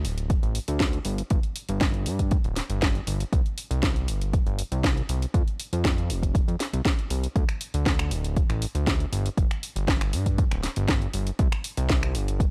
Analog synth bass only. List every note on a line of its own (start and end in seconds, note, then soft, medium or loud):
0.05 0.36 D1 medium
0.43 0.59 A1 loud
0.68 0.99 D2 loud
1.05 1.22 G1 loud
1.31 1.39 G1 loud
1.69 2.08 G1 loud
2.06 2.37 G2 medium
2.45 2.61 D1 loud
2.70 3.00 G1 loud
3.07 3.24 G1 medium
3.33 3.41 C2 loud
3.71 4.09 C2 loud
4.08 4.39 G1 medium
4.47 4.63 G1 loud
4.72 5.02 C2 loud
5.09 5.26 C2 medium
5.34 5.43 F2 loud
5.73 6.11 F2 loud
6.10 6.41 F1 medium
6.48 6.56 F2 medium
6.73 6.81 C2 loud
7.10 7.27 C2 medium
7.36 7.44 D2 medium
7.74 8.13 D2 loud
8.11 8.42 D1 medium
8.50 8.66 A1 loud
8.75 9.06 D2 loud
9.13 9.29 G1 loud
9.38 9.46 G1 loud
9.76 10.15 G1 loud
10.13 10.44 G2 loud
10.51 10.68 D1 loud
10.77 11.07 G1 loud
11.14 11.31 G1 loud
11.39 11.48 C2 loud
11.77 12.16 C2 loud
12.15 12.46 G1 loud